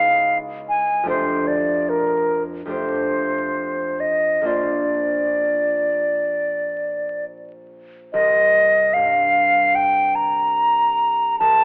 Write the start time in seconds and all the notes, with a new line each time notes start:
Already playing: C#2 G#3 D#4 G#4 B4 F5
0.69 G#5
1.03 F2 A3 D4 G4
1.08 C5
1.47 D5
1.89 A#4
2.65 F2 A3 D4 G4
2.70 C5
4.00 D#5
4.41 A#1 A#3 D4 F4
4.46 C5 D5
8.13 C2 D#5
8.93 G2 F5
9.75 G5
10.15 A#5
11.39 C2 A5